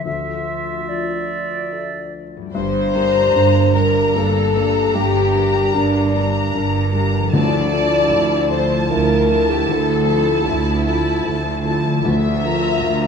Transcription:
Already playing: D3 F3 F4 E5
0.01 A4
0.05 D2 F4 E5
0.89 F3 D5
1.72 A4 E5
2.37 G2
2.41 G3
2.46 D4
2.50 A#3 C5
2.54 G1 G2
2.94 G3 D4 A#4 A#5
3.35 G1 G2 D4 A#4
3.75 G3 D4 A#4 A#5
4.15 G1 G2 A#3 D4 A4
4.55 G3 A#3 D4 A#5
4.94 G1 G2 G4
5.35 G3 D4 A#4 A#5
5.75 G1 G2 D4 A#4
6.15 G3 D4 A#4 A#5
6.55 G1 G2 D4 A#4
6.93 G3 D4 A#4 A#5
7.16 D3
7.20 F3
7.25 E4
7.33 D2 D3 F3 E4 D5 A5
7.72 F3 E4 A4 A5
8.11 D2 E4 A4
8.50 F3 E4 A4 C5 A5
8.90 D2 E4 F4 A#4
9.29 F3 E4 A4 A5
9.50 G4
9.69 D2 A4
10.07 F3 E4 A4 A5
10.48 D2 E4 A4
10.87 F3 E4 A4 A5
11.25 D2 E4 A4
11.65 F3 E4 A4 A5
11.87 D3
11.92 F3
11.96 F4
12.01 A#4
12.05 D2 D3 E5
12.44 F3 F4 A#4 A#5
12.83 D2 F4 A#4

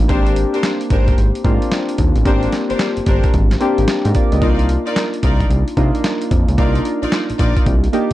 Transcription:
Already playing: A#3 D4 D#4 F4
0.09 G#1 A#3 C4 D4 G4 A#4 C5, kick, closed hi-hat
0.27 closed hi-hat
0.36 closed hi-hat
0.54 D4 G4 A#4 C5, closed hi-hat
0.63 snare, closed hi-hat
0.81 closed hi-hat
0.90 G#1 D4 G4 A#4 C5, kick, closed hi-hat
1.08 kick, closed hi-hat
1.18 G#1, closed hi-hat
1.35 closed hi-hat
1.44 G#2 A#3 C4 D4 F4, kick, closed hi-hat
1.62 closed hi-hat
1.71 snare, closed hi-hat
1.89 closed hi-hat
1.98 D#2, kick, closed hi-hat
2.16 A1, closed hi-hat
2.25 G#1 A#3 C4 D4 G4 A#4 C5, kick, closed hi-hat
2.43 closed hi-hat
2.52 snare, closed hi-hat
2.70 G1 D4 G4 A#4 C5, closed hi-hat
2.79 snare, closed hi-hat
2.97 G1, closed hi-hat
3.06 G1 D4 G4 A#4 C5, kick, closed hi-hat
3.24 kick, closed hi-hat
3.34 G#1, kick, closed hi-hat
3.51 snare, closed hi-hat
3.60 A#3 C4 D4 G4, closed hi-hat
3.78 G#1, closed hi-hat
3.88 snare, closed hi-hat
4.05 G#2 D4 A#4, closed hi-hat
4.15 F4 D5, kick, closed hi-hat
4.32 C#2 G4 D#5, closed hi-hat
4.41 C2 A#3 D4 D#4 F4 A#4 D5, kick, closed hi-hat
4.59 closed hi-hat
4.69 closed hi-hat
4.86 D#4 F4 A#4 D5, closed hi-hat
4.96 snare, closed hi-hat
5.14 closed hi-hat
5.23 C2 D#4 F4 A#4 D5, kick, closed hi-hat
5.40 kick, closed hi-hat
5.50 C2, closed hi-hat
5.68 closed hi-hat
5.77 C3 A#3 D4 D#4 F4, kick, closed hi-hat
5.95 closed hi-hat
6.04 snare, closed hi-hat
6.22 closed hi-hat
6.31 F2, kick, closed hi-hat
6.48 C#2, closed hi-hat
6.58 C2 A#3 D4 D#4 F4 A#4 D5, kick, closed hi-hat
6.75 closed hi-hat
6.85 closed hi-hat
7.02 A#1 D#4 F4 A#4 D5, closed hi-hat
7.12 snare, closed hi-hat
7.30 A#1, closed hi-hat
7.39 A#1 D#4 F4 A#4 D5, kick, closed hi-hat
7.57 kick, closed hi-hat
7.66 C2, kick, closed hi-hat
7.84 closed hi-hat
7.93 A#3 D4 D#4 G4, closed hi-hat

